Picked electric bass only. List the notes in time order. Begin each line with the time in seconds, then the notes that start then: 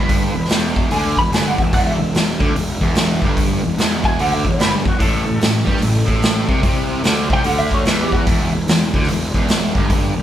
Already playing: G1
0.35 E1
0.50 E1
0.91 D2
1.17 E1
1.32 G1
1.58 E1
1.73 E1
2.00 E1
2.14 E1
2.40 D2
2.54 E1
2.81 E1
3.22 G1
3.64 E1
3.77 E1
4.18 D2
4.45 E1
4.59 G1
4.86 E1
5.01 A1
5.28 A1
5.41 A1
5.67 G2
5.81 A1
6.08 A1
6.49 C2
6.63 C2
7.04 D2
7.30 C2
7.45 D2
7.86 E2
8.27 E1
8.53 E1
8.67 E1
8.94 D2
9.07 E1
9.34 E1
9.75 G1
10.16 E1